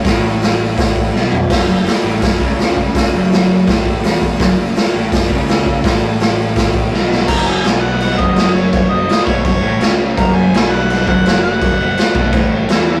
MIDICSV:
0, 0, Header, 1, 5, 480
1, 0, Start_track
1, 0, Tempo, 361011
1, 69, Time_signature, 4, 2, 24, 8
1, 17285, End_track
2, 0, Start_track
2, 0, Title_t, "Harmonica"
2, 0, Program_c, 0, 22
2, 9674, Note_on_c, 0, 82, 101
2, 9921, Note_on_c, 0, 80, 94
2, 9941, Note_off_c, 0, 82, 0
2, 10384, Note_on_c, 0, 78, 100
2, 10404, Note_off_c, 0, 80, 0
2, 10634, Note_off_c, 0, 78, 0
2, 10652, Note_on_c, 0, 78, 104
2, 10866, Note_on_c, 0, 75, 100
2, 10886, Note_off_c, 0, 78, 0
2, 11336, Note_off_c, 0, 75, 0
2, 11344, Note_on_c, 0, 73, 84
2, 11576, Note_off_c, 0, 73, 0
2, 11590, Note_on_c, 0, 73, 90
2, 11823, Note_on_c, 0, 75, 96
2, 11843, Note_off_c, 0, 73, 0
2, 12286, Note_off_c, 0, 75, 0
2, 12294, Note_on_c, 0, 73, 96
2, 12530, Note_off_c, 0, 73, 0
2, 12559, Note_on_c, 0, 73, 97
2, 13229, Note_off_c, 0, 73, 0
2, 13527, Note_on_c, 0, 82, 102
2, 13751, Note_on_c, 0, 80, 89
2, 13771, Note_off_c, 0, 82, 0
2, 14232, Note_on_c, 0, 78, 102
2, 14252, Note_off_c, 0, 80, 0
2, 14715, Note_off_c, 0, 78, 0
2, 14727, Note_on_c, 0, 78, 104
2, 15168, Note_off_c, 0, 78, 0
2, 15195, Note_on_c, 0, 78, 95
2, 16817, Note_off_c, 0, 78, 0
2, 17285, End_track
3, 0, Start_track
3, 0, Title_t, "Overdriven electric guitar"
3, 0, Program_c, 1, 29
3, 77, Note_on_c, 1, 45, 109
3, 1506, Note_off_c, 1, 45, 0
3, 1511, Note_on_c, 1, 47, 109
3, 1988, Note_off_c, 1, 47, 0
3, 1989, Note_on_c, 1, 42, 100
3, 2210, Note_off_c, 1, 42, 0
3, 2226, Note_on_c, 1, 42, 75
3, 2425, Note_off_c, 1, 42, 0
3, 2705, Note_on_c, 1, 45, 98
3, 2946, Note_off_c, 1, 45, 0
3, 2969, Note_on_c, 1, 42, 66
3, 3157, Note_off_c, 1, 42, 0
3, 3200, Note_on_c, 1, 49, 95
3, 4156, Note_off_c, 1, 49, 0
3, 4171, Note_on_c, 1, 42, 93
3, 4882, Note_off_c, 1, 42, 0
3, 4892, Note_on_c, 1, 45, 102
3, 5356, Note_on_c, 1, 40, 102
3, 5362, Note_off_c, 1, 45, 0
3, 5828, Note_off_c, 1, 40, 0
3, 5833, Note_on_c, 1, 42, 115
3, 6063, Note_off_c, 1, 42, 0
3, 6079, Note_on_c, 1, 42, 75
3, 6275, Note_off_c, 1, 42, 0
3, 6554, Note_on_c, 1, 45, 92
3, 6793, Note_off_c, 1, 45, 0
3, 6810, Note_on_c, 1, 42, 65
3, 7000, Note_off_c, 1, 42, 0
3, 7023, Note_on_c, 1, 49, 108
3, 7748, Note_off_c, 1, 49, 0
3, 7763, Note_on_c, 1, 45, 99
3, 9194, Note_off_c, 1, 45, 0
3, 9200, Note_on_c, 1, 47, 101
3, 9674, Note_on_c, 1, 42, 104
3, 9675, Note_off_c, 1, 47, 0
3, 10152, Note_off_c, 1, 42, 0
3, 10165, Note_on_c, 1, 47, 104
3, 10877, Note_off_c, 1, 47, 0
3, 10883, Note_on_c, 1, 42, 99
3, 11818, Note_off_c, 1, 42, 0
3, 11834, Note_on_c, 1, 42, 77
3, 12030, Note_off_c, 1, 42, 0
3, 12322, Note_on_c, 1, 47, 97
3, 12555, Note_off_c, 1, 47, 0
3, 12562, Note_on_c, 1, 42, 64
3, 12754, Note_off_c, 1, 42, 0
3, 12778, Note_on_c, 1, 45, 101
3, 13020, Note_off_c, 1, 45, 0
3, 13025, Note_on_c, 1, 49, 105
3, 13505, Note_off_c, 1, 49, 0
3, 13512, Note_on_c, 1, 42, 117
3, 13988, Note_off_c, 1, 42, 0
3, 13988, Note_on_c, 1, 47, 107
3, 14705, Note_off_c, 1, 47, 0
3, 14732, Note_on_c, 1, 42, 107
3, 15670, Note_off_c, 1, 42, 0
3, 15686, Note_on_c, 1, 42, 70
3, 15872, Note_off_c, 1, 42, 0
3, 16151, Note_on_c, 1, 47, 99
3, 16382, Note_off_c, 1, 47, 0
3, 16387, Note_on_c, 1, 45, 92
3, 16861, Note_off_c, 1, 45, 0
3, 16866, Note_on_c, 1, 52, 109
3, 17285, Note_off_c, 1, 52, 0
3, 17285, End_track
4, 0, Start_track
4, 0, Title_t, "Picked electric bass"
4, 0, Program_c, 2, 34
4, 71, Note_on_c, 2, 33, 94
4, 1463, Note_off_c, 2, 33, 0
4, 1523, Note_on_c, 2, 35, 91
4, 1967, Note_off_c, 2, 35, 0
4, 2007, Note_on_c, 2, 30, 87
4, 2226, Note_off_c, 2, 30, 0
4, 2237, Note_on_c, 2, 30, 72
4, 2461, Note_off_c, 2, 30, 0
4, 2712, Note_on_c, 2, 33, 91
4, 2939, Note_off_c, 2, 33, 0
4, 2958, Note_on_c, 2, 30, 76
4, 3183, Note_off_c, 2, 30, 0
4, 3199, Note_on_c, 2, 37, 89
4, 4110, Note_off_c, 2, 37, 0
4, 4169, Note_on_c, 2, 30, 90
4, 4838, Note_off_c, 2, 30, 0
4, 4887, Note_on_c, 2, 33, 88
4, 5333, Note_off_c, 2, 33, 0
4, 5374, Note_on_c, 2, 28, 93
4, 5817, Note_off_c, 2, 28, 0
4, 5853, Note_on_c, 2, 30, 99
4, 6073, Note_off_c, 2, 30, 0
4, 6090, Note_on_c, 2, 30, 75
4, 6312, Note_off_c, 2, 30, 0
4, 6577, Note_on_c, 2, 33, 91
4, 6796, Note_off_c, 2, 33, 0
4, 6813, Note_on_c, 2, 30, 82
4, 7034, Note_off_c, 2, 30, 0
4, 7051, Note_on_c, 2, 37, 92
4, 7719, Note_off_c, 2, 37, 0
4, 7770, Note_on_c, 2, 33, 96
4, 9154, Note_off_c, 2, 33, 0
4, 9210, Note_on_c, 2, 35, 98
4, 9654, Note_off_c, 2, 35, 0
4, 9688, Note_on_c, 2, 30, 100
4, 10133, Note_off_c, 2, 30, 0
4, 10172, Note_on_c, 2, 35, 95
4, 10838, Note_off_c, 2, 35, 0
4, 10898, Note_on_c, 2, 30, 100
4, 11797, Note_off_c, 2, 30, 0
4, 11836, Note_on_c, 2, 30, 74
4, 12062, Note_off_c, 2, 30, 0
4, 12332, Note_on_c, 2, 35, 93
4, 12551, Note_off_c, 2, 35, 0
4, 12570, Note_on_c, 2, 30, 76
4, 12789, Note_off_c, 2, 30, 0
4, 12797, Note_on_c, 2, 33, 95
4, 13022, Note_off_c, 2, 33, 0
4, 13046, Note_on_c, 2, 37, 99
4, 13489, Note_off_c, 2, 37, 0
4, 13530, Note_on_c, 2, 30, 93
4, 13971, Note_off_c, 2, 30, 0
4, 14006, Note_on_c, 2, 35, 96
4, 14671, Note_off_c, 2, 35, 0
4, 14727, Note_on_c, 2, 30, 98
4, 15627, Note_off_c, 2, 30, 0
4, 15678, Note_on_c, 2, 30, 72
4, 15899, Note_off_c, 2, 30, 0
4, 16160, Note_on_c, 2, 35, 93
4, 16379, Note_off_c, 2, 35, 0
4, 16395, Note_on_c, 2, 33, 91
4, 16839, Note_off_c, 2, 33, 0
4, 16874, Note_on_c, 2, 40, 96
4, 17285, Note_off_c, 2, 40, 0
4, 17285, End_track
5, 0, Start_track
5, 0, Title_t, "Drums"
5, 65, Note_on_c, 9, 36, 116
5, 65, Note_on_c, 9, 46, 56
5, 84, Note_on_c, 9, 38, 115
5, 198, Note_off_c, 9, 36, 0
5, 198, Note_off_c, 9, 46, 0
5, 217, Note_off_c, 9, 38, 0
5, 553, Note_on_c, 9, 46, 59
5, 572, Note_on_c, 9, 38, 119
5, 686, Note_off_c, 9, 46, 0
5, 705, Note_off_c, 9, 38, 0
5, 1033, Note_on_c, 9, 36, 121
5, 1038, Note_on_c, 9, 46, 66
5, 1056, Note_on_c, 9, 38, 114
5, 1166, Note_off_c, 9, 36, 0
5, 1171, Note_off_c, 9, 46, 0
5, 1189, Note_off_c, 9, 38, 0
5, 1274, Note_on_c, 9, 36, 88
5, 1407, Note_off_c, 9, 36, 0
5, 1536, Note_on_c, 9, 38, 58
5, 1669, Note_off_c, 9, 38, 0
5, 1750, Note_on_c, 9, 43, 80
5, 1883, Note_off_c, 9, 43, 0
5, 1996, Note_on_c, 9, 36, 110
5, 1996, Note_on_c, 9, 46, 66
5, 1996, Note_on_c, 9, 49, 96
5, 2014, Note_on_c, 9, 38, 114
5, 2129, Note_off_c, 9, 36, 0
5, 2129, Note_off_c, 9, 46, 0
5, 2129, Note_off_c, 9, 49, 0
5, 2147, Note_off_c, 9, 38, 0
5, 2475, Note_on_c, 9, 46, 62
5, 2493, Note_on_c, 9, 38, 102
5, 2607, Note_off_c, 9, 46, 0
5, 2626, Note_off_c, 9, 38, 0
5, 2946, Note_on_c, 9, 46, 64
5, 2955, Note_on_c, 9, 36, 113
5, 2965, Note_on_c, 9, 38, 107
5, 3079, Note_off_c, 9, 46, 0
5, 3088, Note_off_c, 9, 36, 0
5, 3098, Note_off_c, 9, 38, 0
5, 3196, Note_on_c, 9, 36, 91
5, 3329, Note_off_c, 9, 36, 0
5, 3438, Note_on_c, 9, 46, 49
5, 3457, Note_on_c, 9, 38, 105
5, 3571, Note_off_c, 9, 46, 0
5, 3590, Note_off_c, 9, 38, 0
5, 3679, Note_on_c, 9, 36, 70
5, 3812, Note_off_c, 9, 36, 0
5, 3922, Note_on_c, 9, 36, 106
5, 3922, Note_on_c, 9, 46, 57
5, 3940, Note_on_c, 9, 38, 113
5, 4055, Note_off_c, 9, 36, 0
5, 4055, Note_off_c, 9, 46, 0
5, 4073, Note_off_c, 9, 38, 0
5, 4411, Note_on_c, 9, 46, 55
5, 4430, Note_on_c, 9, 38, 116
5, 4544, Note_off_c, 9, 46, 0
5, 4563, Note_off_c, 9, 38, 0
5, 4887, Note_on_c, 9, 36, 116
5, 4889, Note_on_c, 9, 46, 59
5, 4907, Note_on_c, 9, 38, 120
5, 5020, Note_off_c, 9, 36, 0
5, 5022, Note_off_c, 9, 46, 0
5, 5040, Note_off_c, 9, 38, 0
5, 5126, Note_on_c, 9, 36, 84
5, 5259, Note_off_c, 9, 36, 0
5, 5365, Note_on_c, 9, 46, 61
5, 5383, Note_on_c, 9, 38, 97
5, 5497, Note_off_c, 9, 46, 0
5, 5516, Note_off_c, 9, 38, 0
5, 5607, Note_on_c, 9, 36, 72
5, 5740, Note_off_c, 9, 36, 0
5, 5843, Note_on_c, 9, 46, 63
5, 5849, Note_on_c, 9, 36, 112
5, 5862, Note_on_c, 9, 38, 108
5, 5976, Note_off_c, 9, 46, 0
5, 5982, Note_off_c, 9, 36, 0
5, 5995, Note_off_c, 9, 38, 0
5, 6325, Note_on_c, 9, 46, 64
5, 6343, Note_on_c, 9, 38, 115
5, 6458, Note_off_c, 9, 46, 0
5, 6476, Note_off_c, 9, 38, 0
5, 6809, Note_on_c, 9, 46, 66
5, 6810, Note_on_c, 9, 36, 108
5, 6828, Note_on_c, 9, 38, 118
5, 6942, Note_off_c, 9, 46, 0
5, 6943, Note_off_c, 9, 36, 0
5, 6961, Note_off_c, 9, 38, 0
5, 7053, Note_on_c, 9, 36, 82
5, 7186, Note_off_c, 9, 36, 0
5, 7286, Note_on_c, 9, 46, 56
5, 7305, Note_on_c, 9, 38, 112
5, 7419, Note_off_c, 9, 46, 0
5, 7438, Note_off_c, 9, 38, 0
5, 7529, Note_on_c, 9, 36, 77
5, 7662, Note_off_c, 9, 36, 0
5, 7767, Note_on_c, 9, 36, 113
5, 7768, Note_on_c, 9, 46, 58
5, 7786, Note_on_c, 9, 38, 117
5, 7900, Note_off_c, 9, 36, 0
5, 7901, Note_off_c, 9, 46, 0
5, 7919, Note_off_c, 9, 38, 0
5, 8242, Note_on_c, 9, 46, 52
5, 8261, Note_on_c, 9, 38, 112
5, 8375, Note_off_c, 9, 46, 0
5, 8394, Note_off_c, 9, 38, 0
5, 8720, Note_on_c, 9, 46, 55
5, 8724, Note_on_c, 9, 36, 114
5, 8739, Note_on_c, 9, 38, 109
5, 8853, Note_off_c, 9, 46, 0
5, 8857, Note_off_c, 9, 36, 0
5, 8872, Note_off_c, 9, 38, 0
5, 8962, Note_on_c, 9, 36, 81
5, 9095, Note_off_c, 9, 36, 0
5, 9224, Note_on_c, 9, 38, 64
5, 9357, Note_off_c, 9, 38, 0
5, 9464, Note_on_c, 9, 38, 79
5, 9597, Note_off_c, 9, 38, 0
5, 9679, Note_on_c, 9, 49, 117
5, 9679, Note_on_c, 9, 57, 61
5, 9683, Note_on_c, 9, 36, 101
5, 9812, Note_off_c, 9, 49, 0
5, 9812, Note_off_c, 9, 57, 0
5, 9816, Note_off_c, 9, 36, 0
5, 10164, Note_on_c, 9, 57, 63
5, 10182, Note_on_c, 9, 38, 115
5, 10297, Note_off_c, 9, 57, 0
5, 10315, Note_off_c, 9, 38, 0
5, 10641, Note_on_c, 9, 57, 66
5, 10774, Note_off_c, 9, 57, 0
5, 10887, Note_on_c, 9, 36, 102
5, 11020, Note_off_c, 9, 36, 0
5, 11117, Note_on_c, 9, 57, 56
5, 11136, Note_on_c, 9, 38, 101
5, 11250, Note_off_c, 9, 57, 0
5, 11269, Note_off_c, 9, 38, 0
5, 11605, Note_on_c, 9, 57, 59
5, 11606, Note_on_c, 9, 36, 102
5, 11738, Note_off_c, 9, 57, 0
5, 11739, Note_off_c, 9, 36, 0
5, 12089, Note_on_c, 9, 57, 56
5, 12108, Note_on_c, 9, 38, 114
5, 12222, Note_off_c, 9, 57, 0
5, 12241, Note_off_c, 9, 38, 0
5, 12324, Note_on_c, 9, 36, 100
5, 12457, Note_off_c, 9, 36, 0
5, 12563, Note_on_c, 9, 36, 99
5, 12563, Note_on_c, 9, 57, 60
5, 12696, Note_off_c, 9, 36, 0
5, 12696, Note_off_c, 9, 57, 0
5, 13039, Note_on_c, 9, 57, 59
5, 13057, Note_on_c, 9, 38, 108
5, 13172, Note_off_c, 9, 57, 0
5, 13190, Note_off_c, 9, 38, 0
5, 13529, Note_on_c, 9, 36, 101
5, 13538, Note_on_c, 9, 57, 65
5, 13662, Note_off_c, 9, 36, 0
5, 13671, Note_off_c, 9, 57, 0
5, 14017, Note_on_c, 9, 57, 68
5, 14036, Note_on_c, 9, 38, 112
5, 14150, Note_off_c, 9, 57, 0
5, 14169, Note_off_c, 9, 38, 0
5, 14493, Note_on_c, 9, 57, 69
5, 14626, Note_off_c, 9, 57, 0
5, 14724, Note_on_c, 9, 36, 105
5, 14857, Note_off_c, 9, 36, 0
5, 14967, Note_on_c, 9, 57, 58
5, 14986, Note_on_c, 9, 38, 111
5, 15100, Note_off_c, 9, 57, 0
5, 15119, Note_off_c, 9, 38, 0
5, 15444, Note_on_c, 9, 36, 106
5, 15448, Note_on_c, 9, 57, 57
5, 15577, Note_off_c, 9, 36, 0
5, 15581, Note_off_c, 9, 57, 0
5, 15923, Note_on_c, 9, 57, 60
5, 15941, Note_on_c, 9, 38, 119
5, 16056, Note_off_c, 9, 57, 0
5, 16074, Note_off_c, 9, 38, 0
5, 16154, Note_on_c, 9, 36, 112
5, 16287, Note_off_c, 9, 36, 0
5, 16393, Note_on_c, 9, 36, 111
5, 16394, Note_on_c, 9, 57, 62
5, 16526, Note_off_c, 9, 36, 0
5, 16527, Note_off_c, 9, 57, 0
5, 16869, Note_on_c, 9, 57, 61
5, 16887, Note_on_c, 9, 38, 113
5, 17002, Note_off_c, 9, 57, 0
5, 17020, Note_off_c, 9, 38, 0
5, 17285, End_track
0, 0, End_of_file